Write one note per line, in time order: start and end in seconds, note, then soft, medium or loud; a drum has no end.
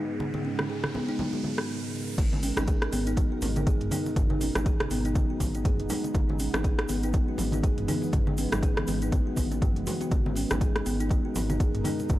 0.00 2.15 G#2 medium
0.00 2.15 C#3 medium
0.00 2.14 G#3 medium
0.00 0.18 B3 medium
0.00 riser medium
0.20 2.16 A#4 medium
0.20 muted conga soft
0.20 high conga medium
0.34 0.44 G#3 medium
0.34 high conga medium
0.45 0.58 C#4 medium
0.59 0.65 D#4 medium
0.59 cross-stick medium
0.59 muted conga soft
0.59 high conga medium
0.70 0.82 G#4 medium
0.84 cross-stick medium
0.84 muted conga soft
0.84 high conga medium
0.94 1.07 B3 medium
0.94 low conga medium
1.08 1.18 D#4 medium
1.08 muted conga soft
1.19 1.32 F#3 medium
1.19 high conga medium
1.19 low conga medium
1.33 1.43 F#4 medium
1.33 muted conga medium
1.44 high conga medium
1.58 1.68 D#3 medium
1.58 cross-stick medium
2.18 2.52 G#1 loud
2.18 6.11 B2 medium
2.18 12.19 G#3 medium
2.18 6.11 D#4 medium
2.18 4.15 A#4 medium
2.18 kick loud
2.18 closed hi-hat medium
2.18 crash loud
2.18 high conga medium
2.18 shaker soft
2.33 2.42 G#3 medium
2.33 high conga loud
2.43 2.56 C#4 medium
2.43 open hi-hat medium
2.43 muted conga medium
2.43 shaker medium
2.57 2.88 G#1 medium
2.57 2.63 D#4 medium
2.57 cross-stick medium
2.57 closed hi-hat soft
2.57 high conga medium
2.57 low conga loud
2.57 shaker medium
2.67 2.81 G#4 medium
2.67 kick loud
2.67 closed hi-hat medium
2.67 muted conga soft
2.67 shaker soft
2.82 cross-stick medium
2.82 closed hi-hat soft
2.93 3.26 G#1 medium
2.93 3.05 B3 loud
2.93 open hi-hat loud
2.93 muted conga medium
2.93 shaker medium
3.07 3.16 D#4 loud
3.07 closed hi-hat soft
3.07 shaker medium
3.17 3.30 F#3 loud
3.17 kick loud
3.17 closed hi-hat medium
3.17 muted conga soft
3.17 shaker soft
3.32 3.42 F#4 medium
3.42 3.83 G#1 loud
3.42 open hi-hat medium
3.42 low conga medium
3.42 shaker medium
3.56 3.62 D#4 medium
3.56 closed hi-hat soft
3.56 muted conga medium
3.56 high conga loud
3.56 shaker soft
3.67 3.80 G#4 medium
3.67 kick loud
3.67 closed hi-hat medium
3.67 shaker soft
3.81 3.89 F#1 medium
3.81 closed hi-hat soft
3.81 mid tom medium
3.81 muted conga soft
3.91 4.05 D#4 loud
3.91 open hi-hat medium
3.91 high conga loud
3.91 low conga medium
3.91 shaker loud
4.06 muted conga medium
4.06 shaker medium
4.16 4.50 G#1 loud
4.16 10.07 B3 medium
4.16 kick loud
4.16 closed hi-hat medium
4.16 mid tom medium
4.16 high conga loud
4.16 shaker soft
4.30 4.41 G#3 medium
4.30 high conga loud
4.41 4.54 C#4 medium
4.41 open hi-hat medium
4.41 muted conga medium
4.41 shaker medium
4.55 4.87 G#1 medium
4.55 4.61 D#4 medium
4.55 cross-stick medium
4.55 closed hi-hat soft
4.55 high conga medium
4.55 low conga loud
4.55 shaker soft
4.66 4.79 G#4 medium
4.66 kick loud
4.66 closed hi-hat medium
4.66 muted conga soft
4.66 shaker soft
4.80 cross-stick loud
4.80 closed hi-hat soft
4.80 high conga medium
4.90 5.24 G#1 medium
4.90 5.04 B3 loud
4.90 open hi-hat loud
4.90 muted conga medium
4.90 shaker medium
5.05 5.15 D#4 loud
5.05 closed hi-hat soft
5.05 shaker medium
5.15 5.29 F#3 loud
5.15 kick loud
5.15 closed hi-hat medium
5.15 muted conga soft
5.15 high conga medium
5.15 shaker soft
5.30 5.40 F#4 medium
5.40 5.81 G#1 loud
5.40 kick medium
5.40 open hi-hat loud
5.40 high conga loud
5.40 low conga medium
5.40 shaker loud
5.55 5.61 D#4 medium
5.55 closed hi-hat soft
5.55 muted conga soft
5.55 shaker medium
5.65 5.78 G#4 medium
5.65 kick loud
5.65 closed hi-hat medium
5.65 mid tom medium
5.65 shaker soft
5.79 5.87 F#1 medium
5.79 closed hi-hat soft
5.79 muted conga soft
5.89 6.03 D#4 loud
5.89 open hi-hat loud
5.89 low conga medium
5.89 shaker loud
6.04 closed hi-hat soft
6.04 muted conga medium
6.04 shaker medium
6.14 6.48 G#1 loud
6.14 10.07 C#3 medium
6.14 10.07 E3 medium
6.14 kick loud
6.14 closed hi-hat medium
6.14 high conga loud
6.14 shaker soft
6.29 6.39 G#3 medium
6.29 high conga loud
6.39 6.52 C#4 medium
6.39 open hi-hat medium
6.39 muted conga medium
6.39 shaker loud
6.54 6.85 G#1 medium
6.54 6.60 D#4 medium
6.54 cross-stick loud
6.54 closed hi-hat soft
6.54 high conga medium
6.54 low conga loud
6.54 shaker soft
6.64 6.77 G#4 medium
6.64 kick loud
6.64 closed hi-hat medium
6.64 muted conga soft
6.64 shaker soft
6.79 cross-stick loud
6.79 closed hi-hat soft
6.89 7.23 G#1 medium
6.89 7.02 B3 loud
6.89 open hi-hat medium
6.89 muted conga soft
6.89 shaker loud
7.03 7.13 D#4 loud
7.03 closed hi-hat soft
7.03 shaker medium
7.13 7.27 F#3 loud
7.13 kick loud
7.13 closed hi-hat medium
7.13 muted conga soft
7.13 shaker soft
7.28 7.38 F#4 medium
7.38 7.79 G#1 loud
7.38 open hi-hat medium
7.38 low conga medium
7.38 shaker loud
7.52 7.59 D#4 medium
7.52 closed hi-hat soft
7.52 muted conga medium
7.52 high conga loud
7.52 shaker medium
7.63 7.77 G#4 medium
7.63 kick loud
7.63 closed hi-hat medium
7.63 shaker soft
7.78 7.86 F#1 medium
7.78 closed hi-hat soft
7.78 mid tom medium
7.78 muted conga soft
7.88 8.01 D#4 loud
7.88 open hi-hat medium
7.88 high conga loud
7.88 low conga medium
7.88 shaker medium
8.02 muted conga soft
8.02 shaker medium
8.13 8.47 G#1 loud
8.13 kick loud
8.13 closed hi-hat medium
8.13 mid tom medium
8.13 high conga loud
8.13 shaker soft
8.27 8.38 G#3 medium
8.27 high conga loud
8.37 8.51 C#4 medium
8.37 open hi-hat medium
8.37 muted conga soft
8.37 shaker medium
8.52 8.83 G#1 medium
8.52 8.58 D#4 medium
8.52 cross-stick loud
8.52 closed hi-hat soft
8.52 high conga medium
8.52 low conga medium
8.52 shaker medium
8.63 8.76 G#4 medium
8.63 kick loud
8.63 closed hi-hat medium
8.63 muted conga soft
8.63 shaker soft
8.77 cross-stick loud
8.77 closed hi-hat soft
8.77 high conga medium
8.87 9.21 G#1 medium
8.87 9.01 B3 loud
8.87 open hi-hat medium
8.87 muted conga soft
8.87 shaker medium
9.02 9.12 D#4 loud
9.02 closed hi-hat soft
9.02 shaker medium
9.12 9.25 F#3 loud
9.12 kick loud
9.12 closed hi-hat medium
9.12 muted conga soft
9.12 high conga loud
9.12 shaker soft
9.27 9.37 F#4 medium
9.36 9.78 G#1 loud
9.36 kick medium
9.36 open hi-hat medium
9.36 high conga medium
9.36 low conga medium
9.36 shaker loud
9.52 9.61 F#3 medium
9.52 closed hi-hat soft
9.52 muted conga soft
9.52 shaker medium
9.62 9.75 G#3 loud
9.62 kick loud
9.62 closed hi-hat medium
9.62 mid tom medium
9.62 shaker soft
9.76 9.84 F#1 medium
9.76 closed hi-hat soft
9.76 muted conga soft
9.87 10.00 F#4 loud
9.87 open hi-hat medium
9.87 low conga medium
9.87 shaker loud
10.01 10.11 F#4 loud
10.01 closed hi-hat soft
10.01 muted conga soft
10.01 shaker medium
10.11 10.45 G#1 loud
10.11 12.19 B2 medium
10.11 12.19 D#4 medium
10.11 12.19 A#4 medium
10.11 kick loud
10.11 closed hi-hat medium
10.11 high conga loud
10.11 shaker soft
10.26 10.36 G#3 medium
10.26 high conga loud
10.36 10.49 C#4 medium
10.36 open hi-hat medium
10.36 muted conga soft
10.36 shaker medium
10.50 10.82 G#1 medium
10.50 10.56 D#4 medium
10.50 cross-stick medium
10.50 closed hi-hat soft
10.50 high conga medium
10.50 low conga loud
10.50 shaker medium
10.61 10.74 G#4 medium
10.61 kick loud
10.61 closed hi-hat medium
10.61 muted conga soft
10.61 shaker soft
10.76 cross-stick medium
10.76 closed hi-hat soft
10.86 11.19 G#1 medium
10.86 10.99 B3 loud
10.86 open hi-hat medium
10.86 muted conga soft
10.86 shaker medium
11.00 11.10 D#4 loud
11.00 closed hi-hat soft
11.00 shaker medium
11.09 11.24 G#3 loud
11.09 kick loud
11.09 closed hi-hat medium
11.09 muted conga soft
11.09 shaker soft
11.25 11.35 F#4 medium
11.35 11.76 G#1 loud
11.35 open hi-hat medium
11.35 low conga medium
11.35 shaker loud
11.50 11.56 D#4 medium
11.50 closed hi-hat soft
11.50 muted conga medium
11.50 high conga loud
11.50 shaker medium
11.60 11.73 G#4 medium
11.60 kick loud
11.60 closed hi-hat medium
11.60 shaker soft
11.74 11.83 F#1 medium
11.74 closed hi-hat soft
11.74 mid tom loud
11.74 muted conga soft
11.84 11.98 D#4 loud
11.84 open hi-hat medium
11.84 high conga loud
11.84 low conga medium
11.84 shaker loud
11.99 muted conga medium
11.99 shaker soft
12.09 12.19 G#1 loud
12.09 kick loud
12.09 closed hi-hat medium
12.09 mid tom loud
12.09 high conga loud
12.09 shaker soft